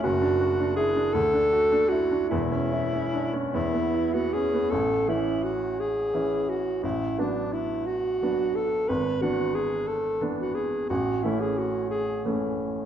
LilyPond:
<<
  \new Staff \with { instrumentName = "Alto saxophone" } { \time 6/8 \key a \major \tempo 4. = 57 fis'4 gis'8 a'4 fis'8 | e'4. e'8. fis'16 gis'8 | a'8 e'8 fis'8 gis'4 fis'8 | e'8 d'8 e'8 fis'4 a'8 |
b'8 fis'8 gis'8 a'8. fis'16 gis'8 | fis'8 e'16 gis'16 fis'8 gis'8 r4 | }
  \new Staff \with { instrumentName = "Grand piano" } { \time 6/8 \key a \major fis,,16 d'16 fis'16 d'16 e'16 d'16 d,16 d'16 fis'16 d'16 e'16 d'16 | <e,, e,>16 cis'16 e'16 cis'16 d'16 cis'16 e,16 b16 e'16 b16 cis'16 b16 | a,,8 <e cis' e'>4. <e cis' e'>4 | a,,8 <fis b d'>4. <fis b d'>4 |
gis,,8 <e b d'>4. <e b d'>4 | a,,8 <e a cis'>4. <e a cis'>4 | }
>>